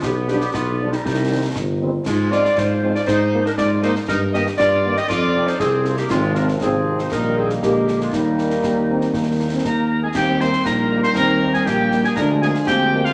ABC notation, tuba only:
X:1
M:2/4
L:1/8
Q:1/4=119
K:Eb
V:1 name="Tuba" clef=bass
=B,,,2 B,,,2 | C,,2 G,,,2 | A,,2 A,,2 | A,,2 A,,2 |
G,,2 G,,2 | F,,2 C,,2 | A,,,2 A,,,2 | B,,,2 B,,,2 |
E,,2 E,,2 | E,,2 E,,2 | E,,2 B,,,2 | E,,2 B,,,2 |
D,,2 D,,2 |]